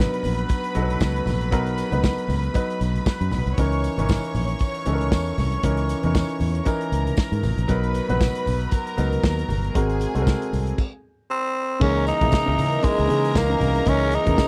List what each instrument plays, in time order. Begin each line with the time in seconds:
Already playing: grand piano F#3 B3 D4 D#4 A#4 B4, string section B4 B5
0.00 snare
0.14 closed hi-hat
0.23 fingered electric bass A#1, open hi-hat, tambourine, muted conga, low conga
0.39 closed hi-hat
0.49 kick, closed hi-hat, tambourine, muted conga
0.64 closed hi-hat
0.75 fingered electric bass B1, grand piano F#3 B3 D#4 A4, closed hi-hat, tambourine
0.82 grand piano B4
0.89 closed hi-hat, high conga
1.00 fingered electric bass C#2, kick, snare, tambourine
1.16 closed hi-hat
1.26 fingered electric bass A#1, snare, open hi-hat, tambourine, high conga, low conga
1.41 closed hi-hat
1.51 fingered electric bass B1, grand piano F#3 B3 D#4 A#4, kick, closed hi-hat, tambourine
1.67 closed hi-hat
1.78 closed hi-hat, tambourine
1.91 fingered electric bass C#2, grand piano F#3 B3 D#4 B4, closed hi-hat, high conga
2.03 kick, snare, tambourine, muted conga, high conga
2.18 closed hi-hat
2.28 fingered electric bass C#2, open hi-hat, tambourine, muted conga, low conga
2.43 closed hi-hat
2.54 grand piano F#3 B3 D#4 B4, kick, closed hi-hat, tambourine, muted conga
2.70 closed hi-hat
2.81 fingered electric bass B1, closed hi-hat, tambourine
2.95 closed hi-hat, high conga
3.06 kick, snare, tambourine, muted conga
3.21 fingered electric bass F#2, closed hi-hat
3.31 fingered electric bass B1, snare, open hi-hat, tambourine, muted conga, high conga, low conga
3.46 fingered electric bass C2, closed hi-hat
3.58 fingered electric bass C#2, grand piano E3 C#4 D#4 A#4, string section C#5 C#6, kick, closed hi-hat, tambourine
3.72 closed hi-hat
3.84 closed hi-hat, tambourine
3.98 fingered electric bass G#1, grand piano E3 C#4 D#4 A#4, closed hi-hat, high conga
4.09 kick, snare, tambourine, muted conga, high conga
4.24 closed hi-hat
4.35 fingered electric bass A#1, open hi-hat, tambourine, muted conga, low conga
4.49 closed hi-hat
4.59 kick, closed hi-hat, tambourine
4.74 closed hi-hat
4.86 fingered electric bass C#2, grand piano E3 C#4 D#4 A4, closed hi-hat, tambourine, muted conga
4.93 grand piano A#4
5.01 closed hi-hat, high conga
5.12 fingered electric bass E2, kick, snare, tambourine
5.26 closed hi-hat
5.38 fingered electric bass C2, snare, open hi-hat, tambourine, muted conga, high conga, low conga
5.52 closed hi-hat
5.63 fingered electric bass C#2, grand piano E3 C#4 D#4 A#4, kick, closed hi-hat, muted conga
5.77 closed hi-hat
5.89 closed hi-hat, tambourine
6.03 fingered electric bass E2, grand piano E3 C#4 D#4 A#4, closed hi-hat, high conga
6.15 kick, snare, tambourine
6.29 closed hi-hat
6.40 fingered electric bass E2, open hi-hat, tambourine, muted conga, low conga
6.55 closed hi-hat
6.65 grand piano E3 C#4 D#4 A#4, string section A#4 A#5, kick, closed hi-hat, tambourine
6.81 closed hi-hat
6.92 fingered electric bass C#2, closed hi-hat, tambourine, muted conga
7.05 closed hi-hat, high conga
7.17 kick, snare, tambourine
7.32 fingered electric bass G#2, closed hi-hat
7.43 fingered electric bass A1, open hi-hat, tambourine, high conga, low conga
7.57 fingered electric bass A#1, closed hi-hat
7.68 fingered electric bass B1, grand piano F#3 B3 D#4 A#4, string section B4 B5, kick, closed hi-hat, tambourine, muted conga
7.83 closed hi-hat
7.94 closed hi-hat, tambourine, muted conga
8.09 fingered electric bass A#1, grand piano F#3 B3 D#4 B4, closed hi-hat, high conga
8.20 kick, snare, tambourine, muted conga, high conga
8.35 closed hi-hat
8.46 fingered electric bass B1, open hi-hat, tambourine, muted conga, low conga
8.61 closed hi-hat
8.71 string section A#4 A#5, kick, closed hi-hat, tambourine, muted conga
8.87 closed hi-hat
8.97 fingered electric bass C#2, grand piano F#3 B3 D#4 A#4, closed hi-hat, tambourine
9.12 closed hi-hat, high conga
9.23 fingered electric bass D#2, kick, snare, tambourine
9.39 closed hi-hat
9.49 fingered electric bass G1, open hi-hat, tambourine, muted conga, high conga, low conga
9.64 closed hi-hat
9.74 fingered electric bass G#1, grand piano G#3 C4 F#4 A#4, string section G#4 G#5, kick, closed hi-hat, muted conga
9.89 closed hi-hat
10.00 closed hi-hat, tambourine, muted conga
10.14 fingered electric bass C2, grand piano G#3 C4 F#4 A4, closed hi-hat, high conga
10.22 grand piano A#4
10.26 kick, snare, tambourine, high conga
10.42 closed hi-hat
10.52 fingered electric bass C2, open hi-hat, tambourine, low conga
10.67 closed hi-hat
10.78 kick, crash
11.31 tenor saxophone C4
11.80 fingered electric bass C#2, grand piano C#3 E3 G#3 A#3 D#4, french horn section E3 C#4 G#4 D#5, tenor saxophone C#4, string section A#4 A#5, kick, crash
12.07 tenor saxophone D#4, closed hi-hat, tambourine
12.21 fingered electric bass A#1, grand piano C#3 E3 G#3 A#3 E4, kick, closed hi-hat, high conga
12.32 kick, snare, tambourine, muted conga, high conga
12.46 fingered electric bass C#2, grand piano C#3 E3 G#3 A#3 E4
12.58 fingered electric bass C#3, open hi-hat, tambourine, low conga
12.72 closed hi-hat
12.83 grand piano C#3 E3 G#3 A#3 D#4, tenor saxophone G#3, kick, closed hi-hat, tambourine
12.99 fingered electric bass C#2, closed hi-hat
13.07 grand piano C#3 E3 G#3 A#3 D#4, fingered electric bass C#3, closed hi-hat, muted conga
13.25 closed hi-hat
13.35 fingered electric bass C#2, tenor saxophone A#3, kick, snare, tambourine
13.49 grand piano C#3 E3 G#3 A#3 D#4, closed hi-hat
13.61 fingered electric bass C2, open hi-hat, tambourine, high conga, low conga
13.75 closed hi-hat
13.86 fingered electric bass C#2, grand piano C#3 E3 G#3 A#3 D#4, tenor saxophone C#4, kick, closed hi-hat, tambourine
14.00 closed hi-hat
14.11 tenor saxophone D#4, closed hi-hat, tambourine, muted conga
14.26 fingered electric bass E2, grand piano C#3 E3 G#3 A#3 C#4, kick, closed hi-hat, high conga
14.38 kick, snare, tambourine, high conga